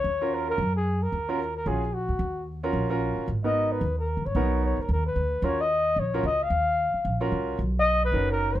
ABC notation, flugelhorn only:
X:1
M:4/4
L:1/8
Q:"Swing" 1/4=223
K:Ebm
V:1 name="Flugelhorn"
d2 B B2 A2 B- | B3 B A2 G2- | G2 z6 | z e2 c2 B2 d- |
d2 d B B c3 | d e3 d2 e f- | f4- f z3 | z ^d2 =B2 ^A2 z |]